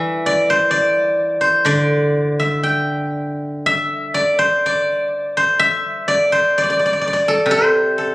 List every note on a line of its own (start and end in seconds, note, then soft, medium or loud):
0.00 2.64 E3 medium
0.00 0.49 C5 medium
0.00 0.26 D5 medium
0.00 1.50 E5 loud
0.26 0.70 D5 medium
0.50 1.40 C5 medium
0.71 1.65 D5 medium
1.41 3.39 C5 medium
1.65 4.63 D3 medium
1.65 3.50 D5 medium
2.39 3.66 E5 medium
2.63 4.19 G5 medium
3.66 5.38 E5 medium
4.14 4.65 D5 medium
4.39 5.37 C5 medium
4.66 6.07 D5 medium
5.37 6.32 C5 medium
5.59 7.31 E5 loud
6.08 6.57 D5 medium
6.32 7.50 C5 medium
6.58 6.63 D5 medium
6.63 6.69 D5 medium
6.70 6.79 D5 medium
6.79 6.85 D5 soft
6.86 6.92 D5 medium
6.93 7.01 D5 medium
7.01 7.07 D5 medium
7.07 7.13 D5 medium
7.13 8.15 D5 medium
7.28 7.98 A4 medium
7.46 8.15 C3 medium
7.51 8.15 C5 loud
7.98 8.15 A4 medium